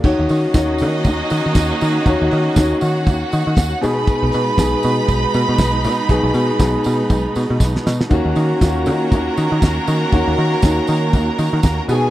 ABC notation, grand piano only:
X:1
M:4/4
L:1/16
Q:"Swing 16ths" 1/4=119
K:Ebm
V:1 name="Grand piano"
[E,EGd]3 z [E,EGd]6 z6 | [E,EGd]3 z [E,EGd]6 z4 [=B,,=B,^D^G]2- | [=B,,=B,^D^G]2 z2 [B,,B,DG]6 z6 | [=B,,=B,^D^G]3 z [B,,B,DG]6 z6 |
[E,B,DG]3 z [E,B,DFG]6 z6 | [E,B,DG]3 z [E,B,DE]6 z4 [=B,,=B,^D^G]2 |]